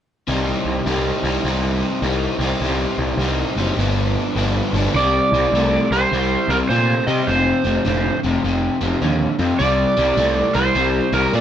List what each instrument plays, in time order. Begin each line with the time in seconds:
0.27 picked electric bass C2, overdriven electric guitar C3 G3 C4 D#4
0.65 picked electric bass C2
0.86 picked electric bass C2, overdriven electric guitar C3 G3 C4 D#4
1.23 picked electric bass C2, overdriven electric guitar C3 G3 C4 D#4
1.44 picked electric bass C2, overdriven electric guitar C3 G3 C4 D#4
2.02 picked electric bass C2, overdriven electric guitar C3 G3 C4 D#4
2.39 picked electric bass C2, overdriven electric guitar C3 G3 C4 D#4
2.61 picked electric bass C2, overdriven electric guitar C3 G3 C4 D#4
2.98 picked electric bass C2
3.17 picked electric bass C2, overdriven electric guitar C3 G3 C4
3.22 overdriven electric guitar D#4
3.56 picked electric bass F#1, overdriven electric guitar C3 G3 C4 D#4
3.77 picked electric bass G1, overdriven electric guitar G2 D3 F3 B3 D4
4.35 picked electric bass G1, overdriven electric guitar G2 D3 F3 B3 D4
4.73 picked electric bass G1, overdriven electric guitar G2 D3 F3 B3 D4
4.94 picked electric bass C2, overdriven electric guitar C3 G3, electric slide guitar D5
5.32 picked electric bass C2, overdriven electric guitar C3 G3
5.53 picked electric bass C2, overdriven electric guitar C3 A3
5.91 picked electric bass C2, overdriven electric guitar C3 G3, electric slide guitar C5
6.12 picked electric bass C2, overdriven electric guitar C3 G3
6.48 picked electric bass C2, overdriven electric guitar C3 G3, electric slide guitar A#4
6.69 picked electric bass A#2, overdriven electric guitar C3 A3, electric slide guitar C5
7.07 overdriven electric guitar C3 G3, picked electric bass C3, electric slide guitar D#5
7.27 picked electric bass F1, overdriven electric guitar F2 C3, electric slide guitar C5
7.64 picked electric bass F1, overdriven electric guitar F2 C3
7.85 picked electric bass F1, overdriven electric guitar F2 D3
8.24 picked electric bass F1, overdriven electric guitar F2 C3
8.44 picked electric bass F1, overdriven electric guitar F2 C3
8.81 picked electric bass F1, overdriven electric guitar F2 C3
9.02 picked electric bass D#2, overdriven electric guitar F2 D3
9.39 overdriven electric guitar F2 C3, picked electric bass F2
9.59 picked electric bass C2, overdriven electric guitar C3 G3, electric slide guitar D5
9.97 picked electric bass C2, overdriven electric guitar C3 G3
10.17 picked electric bass C2, overdriven electric guitar C3 A3
10.54 picked electric bass C2, overdriven electric guitar C3 G3, electric slide guitar C5
10.75 picked electric bass C2, overdriven electric guitar C3 G3
11.12 picked electric bass C2, overdriven electric guitar C3 G3, electric slide guitar A#4
11.33 picked electric bass A#2, overdriven electric guitar C3 A3, electric slide guitar D5